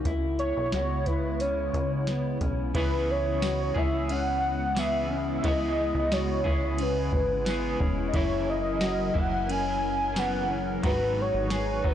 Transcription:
0.05 analog synth bass C#2, analog synth pad C#3 G#3 B3 E4, clean electric guitar E4, kick, closed hi-hat
0.39 soft synth lead C#5, closed hi-hat
0.57 analog synth bass B1
0.72 analog synth bass C#2, clean electric guitar F#4, snare, closed hi-hat
1.06 clean electric guitar E4, soft synth lead B4, kick, closed hi-hat
1.40 clean electric guitar C#4, soft synth lead C#5, closed hi-hat
1.74 analog synth bass C#2, kick, closed hi-hat
2.07 clean electric guitar B3, snare, closed hi-hat
2.41 analog synth bass B1, clean electric guitar C#4, kick, closed hi-hat
2.74 analog synth bass C#2, clean electric guitar C#3 E3 B3 C#4 E4 G#4, analog synth pad C#3 G#3 B3 E4, soft synth lead B4, kick, ride
3.11 soft synth lead C#5
3.42 clean electric guitar F#4, snare, ride, tambourine
3.74 analog synth bass C#2, clean electric guitar C#4 E4 G#4, soft synth lead E5, kick
3.79 clean electric guitar B3
4.09 clean electric guitar C#4, soft synth lead F#5, ride
4.75 clean electric guitar E3 B3 C#4, soft synth lead E5, snare, ride, tambourine
4.80 clean electric guitar G#4
5.10 clean electric guitar C#4
5.38 soft synth lead E5
5.43 analog synth bass C#2, clean electric guitar C#3 E3 B3 C#4 E4 G#4, soft synth lead D#5, kick, ride
5.95 analog synth bass C#2
6.12 clean electric guitar F#4, soft synth lead C#5, snare, ride, tambourine
6.44 analog synth bass C#2, clean electric guitar C#4 E4 G#4, kick
6.49 clean electric guitar B3
6.78 clean electric guitar C#4, soft synth lead B4, ride
7.12 analog synth bass G#1, kick
7.45 clean electric guitar E3 B3 C#4, snare, ride, tambourine
7.50 clean electric guitar G#4
7.80 analog synth bass E1, clean electric guitar C#4, kick
8.08 soft synth lead D#5
8.13 analog synth bass F#1, clean electric guitar F#2 C#3 E3 A#3 E4, analog synth pad F#3 C#4 A#4, soft synth lead C#5, kick, ride
8.50 soft synth lead D#5
8.81 clean electric guitar F#4, snare, ride, tambourine
9.14 analog synth bass F#1, clean electric guitar A#3 E4, kick
9.18 clean electric guitar E3, soft synth lead F#5
9.49 clean electric guitar C#4, soft synth lead G#5, ride
10.14 clean electric guitar C#3 E3 A#3 B3, snare, ride, tambourine
10.19 clean electric guitar E4, soft synth lead F#5
10.50 clean electric guitar C#4
10.83 analog synth bass G#1, clean electric guitar G#2 D#3 F#3 B3 D#4 F#4, analog synth pad G#3 D#4 F#4 B4, soft synth lead B4, kick, ride
11.21 soft synth lead C#5
11.34 analog synth bass G#1
11.50 clean electric guitar G#4, snare, ride, tambourine
11.83 analog synth bass G#1, clean electric guitar B3 D#4 F#4, kick
11.87 clean electric guitar F#3, soft synth lead B4

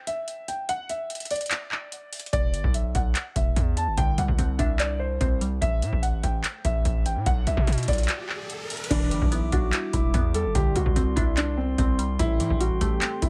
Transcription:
0.07 grand piano E5, closed hi-hat
0.28 closed hi-hat
0.48 grand piano G5, closed hi-hat
0.69 grand piano F#5, closed hi-hat
0.89 grand piano E5, closed hi-hat
1.10 closed hi-hat
1.15 closed hi-hat
1.20 closed hi-hat
1.25 closed hi-hat
1.31 grand piano D5, closed hi-hat, open hi-hat
1.36 closed hi-hat
1.41 closed hi-hat
1.46 closed hi-hat
1.51 clap, closed hi-hat
1.72 clap
1.92 closed hi-hat
2.13 closed hi-hat, open hi-hat
2.19 closed hi-hat
2.26 closed hi-hat
2.33 808-style bass E1, grand piano D5, kick, closed hi-hat
2.54 808-style bass G1, closed hi-hat
2.64 808-style bass B1, kick
2.74 grand piano E5, closed hi-hat
2.95 808-style bass B1, grand piano F#5, kick, closed hi-hat
3.15 clap, closed hi-hat
3.36 808-style bass E1, grand piano E5, kick, closed hi-hat
3.56 808-style bass E2, kick, closed hi-hat
3.77 grand piano A5, closed hi-hat
3.87 808-style bass G1
3.97 808-style bass C2, synth pluck D3, grand piano G5, kick, closed hi-hat
4.18 808-style bass C2, synth pluck G3, grand piano F#5, closed hi-hat
4.28 808-style bass C2, kick
4.39 808-style bass C2, synth pluck C4, closed hi-hat
4.59 808-style bass C2, synth pluck D4, grand piano E5, kick, closed hi-hat
4.80 grand piano D5, synth pluck D5, clap, closed hi-hat
5.00 grand piano C5
5.21 808-style bass C2, synth pluck C4, grand piano C5, kick, closed hi-hat
5.41 synth pluck G3, closed hi-hat
5.62 808-style bass A1, grand piano E5, kick, closed hi-hat, riser
5.82 808-style bass A2, closed hi-hat
5.93 808-style bass A1, kick
6.03 grand piano F#5, closed hi-hat
6.23 808-style bass A1, grand piano G5, kick, closed hi-hat
6.44 clap, closed hi-hat
6.65 808-style bass A1, grand piano E5, kick, closed hi-hat
6.85 808-style bass A1, kick, closed hi-hat
7.06 grand piano G5, closed hi-hat
7.16 808-style bass A2
7.26 808-style bass B1, grand piano F#5, kick, closed hi-hat
7.47 808-style bass B1, grand piano E5, closed hi-hat
7.57 808-style bass B2, kick
7.67 808-style bass B2, closed hi-hat
7.72 closed hi-hat
7.78 closed hi-hat
7.83 closed hi-hat
7.88 808-style bass B1, grand piano D5, kick, closed hi-hat, open hi-hat
7.93 closed hi-hat
7.98 closed hi-hat
8.03 closed hi-hat
8.08 clap, closed hi-hat
8.29 clap
8.50 closed hi-hat
8.70 closed hi-hat, open hi-hat
8.77 closed hi-hat
8.84 closed hi-hat
8.90 808-style bass E1, synth pluck E3, glass harmonica G3 E5 D6, grand piano D4, kick, closed hi-hat, crash
9.11 808-style bass G1, synth pluck G3, closed hi-hat
9.22 808-style bass B1, kick
9.32 synth pluck B3, grand piano E4, closed hi-hat
9.52 808-style bass B1, synth pluck D4, grand piano F#4, kick, closed hi-hat
9.73 synth pluck E4, clap, closed hi-hat
9.93 808-style bass E1, grand piano E4, kick, closed hi-hat
10.14 808-style bass E2, synth pluck B3, kick, closed hi-hat
10.34 synth pluck G3, grand piano A4, closed hi-hat
10.45 808-style bass G1
10.55 808-style bass C2, synth pluck D3, glass harmonica G3 D5 C6, grand piano G4, kick, closed hi-hat
10.75 808-style bass C2, synth pluck G3, grand piano F#4, closed hi-hat
10.86 808-style bass C2, kick
10.96 808-style bass C2, synth pluck C4, closed hi-hat
11.16 808-style bass C2, synth pluck D4, grand piano E4, kick, closed hi-hat
11.37 grand piano D4, synth pluck D5, clap, closed hi-hat
11.57 grand piano C4
11.78 808-style bass C2, synth pluck C4, grand piano C4, kick, closed hi-hat
11.99 synth pluck G3, closed hi-hat
12.19 808-style bass A1, synth pluck A2, grand piano E4, glass harmonica A4 G5, kick, closed hi-hat
12.40 808-style bass A2, synth pluck E3, closed hi-hat
12.50 808-style bass A1, kick
12.60 synth pluck G3, grand piano F#4, closed hi-hat
12.81 808-style bass A1, synth pluck A3, grand piano G4, kick, closed hi-hat
13.02 synth pluck C4, clap, closed hi-hat
13.22 808-style bass A1, grand piano E4, kick, closed hi-hat

